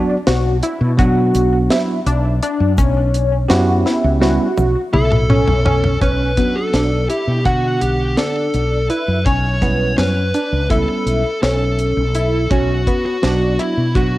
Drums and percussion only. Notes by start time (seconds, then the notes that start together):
0.27 snare, closed hi-hat
0.63 closed hi-hat
0.99 kick, closed hi-hat
1.34 closed hi-hat, shaker
1.71 snare, closed hi-hat
2.07 closed hi-hat
2.43 closed hi-hat
2.78 kick, closed hi-hat, shaker
3.14 closed hi-hat
3.50 snare, closed hi-hat
3.86 snare
4.22 snare
4.58 high tom, shaker
4.94 mid tom
5.12 mid tom
5.30 mid tom
5.48 floor tom
5.66 floor tom
5.84 floor tom
6.01 kick, closed hi-hat
6.37 kick, closed hi-hat
6.74 snare, closed hi-hat
7.10 closed hi-hat
7.45 kick, closed hi-hat
7.81 closed hi-hat
8.17 snare, closed hi-hat
8.54 closed hi-hat
8.90 closed hi-hat
9.26 kick, closed hi-hat
9.62 kick, snare, closed hi-hat
9.98 snare, closed hi-hat
10.34 closed hi-hat
10.70 kick, closed hi-hat
11.07 closed hi-hat
11.43 snare, closed hi-hat
11.79 closed hi-hat
12.15 closed hi-hat
12.51 kick, closed hi-hat
12.87 kick, closed hi-hat
13.23 snare, closed hi-hat
13.59 closed hi-hat
13.95 kick, closed hi-hat